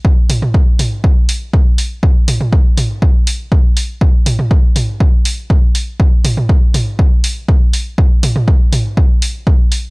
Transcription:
\new DrumStaff \with { instrumentName = "Drums" } \drummode { \time 4/4 \tempo 4 = 121 bd8 <hho toml>16 toml16 bd8 <hho toml>8 bd8 hho8 bd8 hho8 | bd8 <hho toml>16 toml16 bd8 <hho toml>8 bd8 hho8 bd8 hho8 | bd8 <hho toml>16 toml16 bd8 <hho toml>8 bd8 hho8 bd8 hho8 | bd8 <hho toml>16 toml16 bd8 <hho toml>8 bd8 hho8 bd8 hho8 |
bd8 <hho toml>16 toml16 bd8 <hho toml>8 bd8 hho8 bd8 hho8 | }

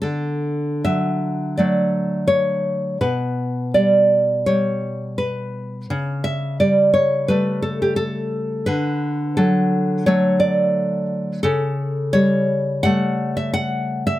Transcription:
\new Staff \with { instrumentName = "Nylon-string guitar" } { \time 4/4 \key d \major \tempo 4 = 85 << { a'4 e''4 d''4 cis''4 | b'4 d''4 cis''4 b'4 | r8 e''8 d''8 cis''8 b'8 a'16 g'16 a'4 | b'4 a'4 cis''8 d''4 r8 |
a'4 cis''4 fis''8. e''16 fis''8. e''16 | } \\ { d4 fis4 <fis a>2 | b,4 g4 g2 | cis4 g4 <g a>2 | d4 fis4 <fis a>2 |
cis4 g4 <g a>2 | } >> }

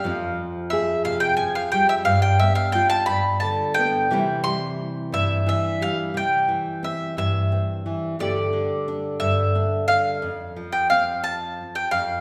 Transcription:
<<
  \new Staff \with { instrumentName = "Mandolin" } { \time 6/8 \key c \major \tempo 4. = 59 << { f''8. r16 e''8 f''16 g''16 aes''16 f''16 g''16 e''16 | f''16 g''16 e''16 f''16 g''16 a''16 b''8 a''8 g''8~ | g''8 c'''4. r4 | r2. |
r2. | r2. | } \\ { r2. | r2. | r4. e''8 e''8 f''8 | g''4 e''8 e''4. |
d''4. e''4 f''8~ | f''8. g''16 f''8 a''8. g''16 f''8 | } >> }
  \new Staff \with { instrumentName = "Nylon-string guitar" } { \clef bass \time 6/8 \key c \major << { <f c'>4 aes'4. g8~ | g8 b8 f'4. b8 | <e g c' e'>8 g2 g8~ | g4 c'4 c'4 |
<d a d' g'>4 d'4 d'4 | r4 c'2 | } \\ { f,4. c8 f4 | g,4. g,8 d4 | c4. g,8 e4 | c8 e4 g,4 e8 |
g,8 d4 g,4 d8 | f,8 f2 f,8 | } >> }
>>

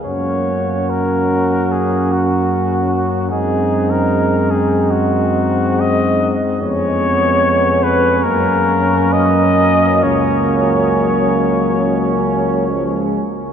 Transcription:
<<
  \new Staff \with { instrumentName = "Cornet" } { \time 4/4 \key fis \major \tempo 4 = 72 cis''4 ais'4 gis'8 fis'4. | gis'8. ais'8. gis'8 fis'4 dis''8. r16 | cis''4. b'8 ais'4 dis''4 | cis''2.~ cis''8 r8 | }
  \new Staff \with { instrumentName = "Flugelhorn" } { \time 4/4 \key fis \major fis'1 | dis'2.~ dis'8 r8 | cis'1~ | cis'2 cis'4. r8 | }
  \new Staff \with { instrumentName = "Trombone section" } { \time 4/4 \key fis \major cis'1 | bis1 | b2 ais2~ | ais2. gis8 r8 | }
  \new Staff \with { instrumentName = "Euphonium" } { \clef bass \time 4/4 \key fis \major ais1 | gis1~ | gis2~ gis8 r8 fis4~ | fis2. eis8 r8 | }
  \new Staff \with { instrumentName = "Tuba" } { \clef bass \time 4/4 \key fis \major fis,1 | fis,2.~ fis,8 r8 | eis,2 fis,2 | cis,2.~ cis,8 r8 | }
>>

